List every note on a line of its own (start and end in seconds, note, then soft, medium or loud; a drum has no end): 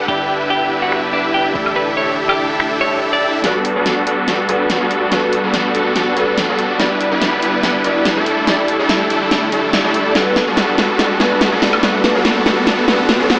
0.06 1.53 G1 medium
0.06 3.41 D3 medium
0.06 1.52 G3 medium
0.06 1.54 G3 medium
0.06 1.54 B3 medium
0.06 1.53 D4 medium
0.06 1.52 E4 medium
0.06 3.41 E4 medium
0.06 1.53 E4 medium
0.06 1.53 G4 medium
0.06 0.33 G4 medium
0.06 1.53 B4 medium
0.06 1.54 D5 medium
0.06 1.53 E5 medium
0.06 1.53 F#5 medium
0.50 0.69 G4 medium
0.82 1.00 F#4 medium
0.92 finger snap medium
1.13 1.26 D4 medium
1.34 1.47 G4 medium
1.53 3.21 A1 medium
1.53 3.42 G3 medium
1.53 3.41 A3 medium
1.53 3.42 A3 medium
1.53 3.42 D4 medium
1.53 3.41 E4 medium
1.53 3.42 E4 medium
1.53 3.42 G4 medium
1.53 3.42 A4 medium
1.53 3.42 E5 medium
1.53 open hi-hat medium
1.57 3.43 D5 medium
1.66 high woodblock medium
1.76 1.89 B4 medium
1.97 2.15 C#5 medium
2.29 2.47 G4 medium
2.29 high woodblock medium
2.60 finger snap medium
2.81 2.99 C#5 medium
3.13 3.31 D5 medium
3.23 open hi-hat medium
3.42 6.76 B2 medium
3.42 4.45 G3 medium
3.42 3.73 G3 medium
3.42 10.11 G3 medium
3.42 6.76 A3 medium
3.42 3.73 B3 medium
3.42 3.73 D4 medium
3.42 4.46 F#4 medium
3.42 3.73 F#4 medium
3.42 6.76 F#4 medium
3.42 3.73 A4 medium
3.42 4.47 A4 medium
3.42 snare soft
3.42 closed hi-hat medium
3.42 riser medium
3.46 4.47 B4 medium
3.65 closed hi-hat medium
3.76 4.04 G3 medium
3.76 4.04 B3 medium
3.76 4.04 D4 medium
3.76 4.04 F#4 medium
3.76 4.04 A4 loud
3.86 snare soft
3.86 closed hi-hat medium
4.07 4.46 G3 medium
4.07 4.46 B3 medium
4.07 4.46 D4 medium
4.07 4.46 F#4 medium
4.07 4.46 A4 medium
4.07 closed hi-hat medium
4.28 snare soft
4.28 closed hi-hat medium
4.47 5.08 G3 medium
4.47 4.78 G3 medium
4.47 4.78 B3 medium
4.47 4.78 D4 medium
4.47 5.09 F#4 medium
4.47 4.78 F#4 medium
4.47 4.78 A4 medium
4.47 5.10 A4 medium
4.47 5.10 B4 medium
4.47 closed hi-hat medium
4.70 snare medium
4.70 closed hi-hat medium
4.81 5.09 G3 medium
4.81 5.09 B3 medium
4.81 5.09 D4 medium
4.81 5.09 F#4 medium
4.81 5.09 A4 loud
4.91 closed hi-hat medium
5.10 6.13 G3 medium
5.10 5.41 G3 medium
5.10 5.41 B3 medium
5.10 5.41 D4 medium
5.10 6.14 F#4 medium
5.10 5.41 F#4 medium
5.10 5.41 A4 medium
5.10 6.15 A4 medium
5.10 6.15 B4 medium
5.10 snare soft
5.10 closed hi-hat medium
5.33 closed hi-hat medium
5.44 5.72 G3 medium
5.44 5.72 B3 medium
5.44 5.72 D4 medium
5.44 5.72 F#4 medium
5.44 5.72 A4 loud
5.54 snare medium
5.54 closed hi-hat medium
5.75 6.14 G3 medium
5.75 6.14 B3 medium
5.75 6.14 D4 medium
5.75 6.14 F#4 medium
5.75 6.14 A4 medium
5.75 closed hi-hat medium
5.96 snare medium
5.96 closed hi-hat medium
6.15 6.76 G3 medium
6.15 6.46 G3 medium
6.15 6.46 B3 medium
6.15 6.46 D4 medium
6.15 6.77 F#4 medium
6.15 6.46 F#4 medium
6.15 6.46 A4 medium
6.15 6.78 A4 medium
6.15 closed hi-hat medium
6.19 6.78 B4 medium
6.38 snare medium
6.38 closed hi-hat medium
6.49 6.77 G3 medium
6.49 6.77 B3 medium
6.49 6.77 D4 medium
6.49 6.77 F#4 medium
6.49 6.77 A4 loud
6.59 closed hi-hat medium
6.78 8.25 G2 medium
6.78 8.25 D3 medium
6.78 7.81 G3 medium
6.78 7.09 G3 medium
6.78 8.25 B3 medium
6.78 7.09 B3 medium
6.78 7.09 D4 medium
6.78 7.82 E4 medium
6.78 10.12 E4 medium
6.78 7.09 E4 medium
6.78 7.82 F#4 medium
6.78 7.09 B4 medium
6.78 7.83 D5 loud
6.78 snare medium
6.78 closed hi-hat medium
7.01 closed hi-hat medium
7.12 7.40 G3 medium
7.12 7.40 B3 medium
7.12 7.40 D4 medium
7.12 7.40 E4 medium
7.12 7.40 B4 loud
7.22 snare medium
7.22 closed hi-hat medium
7.42 7.82 G3 medium
7.42 7.82 B3 medium
7.42 7.82 D4 medium
7.42 7.82 E4 medium
7.42 7.82 B4 loud
7.42 closed hi-hat medium
7.63 snare medium
7.63 closed hi-hat medium
7.83 8.25 G3 medium
7.83 8.14 G3 medium
7.83 8.14 B3 medium
7.83 8.14 D4 medium
7.83 8.25 E4 medium
7.83 8.14 E4 medium
7.83 8.25 F#4 medium
7.83 8.14 B4 medium
7.83 8.26 D5 medium
7.83 closed hi-hat medium
8.05 snare medium
8.05 closed hi-hat medium
8.16 8.45 G3 medium
8.16 8.45 A3 medium
8.16 8.45 D4 medium
8.16 8.45 E4 medium
8.16 8.45 A4 loud
8.26 10.13 D3 medium
8.26 13.39 A3 medium
8.26 closed hi-hat medium
8.45 8.77 G3 medium
8.45 9.49 A3 medium
8.45 8.77 A3 medium
8.45 8.77 D4 medium
8.45 9.50 E4 medium
8.45 8.77 E4 medium
8.45 9.50 G4 medium
8.45 8.77 A4 medium
8.45 9.51 D5 loud
8.45 snare medium
8.45 closed hi-hat medium
8.68 closed hi-hat medium
8.79 9.08 G3 loud
8.79 9.08 A3 medium
8.79 9.08 D4 medium
8.79 9.08 E4 medium
8.79 9.08 A4 loud
8.89 snare medium
8.89 closed hi-hat medium
9.10 9.50 G3 medium
9.10 9.50 A3 medium
9.10 9.50 D4 medium
9.10 9.50 E4 medium
9.10 9.50 A4 loud
9.10 closed hi-hat medium
9.31 snare medium
9.31 closed hi-hat medium
9.52 9.82 G3 medium
9.52 9.82 A3 medium
9.52 9.82 D4 medium
9.52 9.82 E4 medium
9.52 9.82 A4 medium
9.52 closed hi-hat medium
9.73 snare medium
9.73 closed hi-hat medium
9.83 10.13 G3 medium
9.83 10.12 A3 medium
9.83 10.13 A3 medium
9.83 10.13 D4 medium
9.83 10.13 E4 medium
9.83 10.13 G4 medium
9.83 10.13 A4 loud
9.83 10.13 D5 loud
9.94 closed hi-hat medium
10.13 13.39 B2 medium
10.13 11.17 G3 medium
10.13 10.45 G3 medium
10.13 13.39 G3 medium
10.13 10.45 B3 medium
10.13 10.45 D4 medium
10.13 11.17 F#4 medium
10.13 10.45 F#4 medium
10.13 13.39 F#4 medium
10.13 10.45 A4 medium
10.13 11.18 A4 medium
10.13 snare medium
10.13 closed hi-hat medium
10.17 11.19 B4 medium
10.36 snare medium
10.36 closed hi-hat medium
10.47 10.76 G3 medium
10.47 10.76 B3 medium
10.47 10.76 D4 medium
10.47 10.76 F#4 medium
10.47 10.76 A4 loud
10.57 snare medium
10.57 closed hi-hat medium
10.78 11.18 G3 medium
10.78 11.18 B3 medium
10.78 11.18 D4 medium
10.78 11.18 F#4 medium
10.78 11.18 A4 loud
10.78 snare medium
10.78 closed hi-hat medium
10.99 snare medium
10.99 closed hi-hat medium
11.18 11.80 G3 medium
11.18 11.49 G3 medium
11.18 11.49 B3 medium
11.18 11.49 D4 medium
11.18 11.80 F#4 medium
11.18 11.50 F#4 medium
11.18 11.49 A4 medium
11.18 11.81 A4 medium
11.18 snare medium
11.18 closed hi-hat medium
11.22 11.82 B4 medium
11.41 snare medium
11.41 closed hi-hat medium
11.52 11.81 G3 medium
11.52 11.81 B3 medium
11.52 11.81 D4 medium
11.52 11.81 F#4 medium
11.52 11.81 A4 loud
11.62 snare medium
11.62 open hi-hat medium
11.73 high woodblock medium
11.81 12.85 G3 medium
11.81 12.12 G3 medium
11.81 12.12 B3 medium
11.81 12.12 D4 medium
11.81 12.85 F#4 medium
11.81 12.12 F#4 medium
11.81 12.12 A4 medium
11.81 12.86 A4 medium
11.81 12.87 B4 loud
11.81 snare medium
11.81 closed hi-hat medium
12.04 snare medium
12.04 closed hi-hat medium
12.15 12.44 G3 loud
12.15 12.44 B3 medium
12.15 12.44 D4 medium
12.15 12.44 F#4 medium
12.15 12.44 A4 loud
12.25 snare medium
12.25 closed hi-hat medium
12.46 12.86 G3 medium
12.46 12.86 B3 medium
12.46 12.86 D4 medium
12.46 12.86 F#4 medium
12.46 12.86 A4 medium
12.46 snare medium
12.46 closed hi-hat medium
12.67 snare medium
12.67 closed hi-hat medium
12.86 13.39 G3 medium
12.86 13.17 G3 medium
12.86 13.17 B3 medium
12.86 13.17 D4 medium
12.86 13.39 F#4 medium
12.86 13.17 F#4 medium
12.86 13.17 A4 medium
12.86 13.39 A4 medium
12.86 13.39 B4 medium
12.86 snare medium
12.86 closed hi-hat medium
13.09 snare medium
13.09 closed hi-hat medium
13.20 13.39 G3 medium
13.20 13.39 B3 medium
13.20 13.39 D4 medium
13.20 13.39 F#4 medium
13.20 13.39 A4 loud
13.30 snare medium
13.30 open hi-hat medium